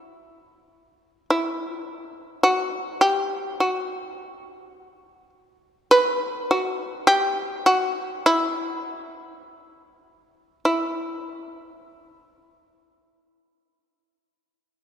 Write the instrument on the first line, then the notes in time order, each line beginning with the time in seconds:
shamisen
Already playing: E4
1.30 E4
2.43 F#4
3.01 G4
3.60 F#4
5.91 B4
6.51 F#4
7.07 G4
7.66 F#4
8.26 E4
10.65 E4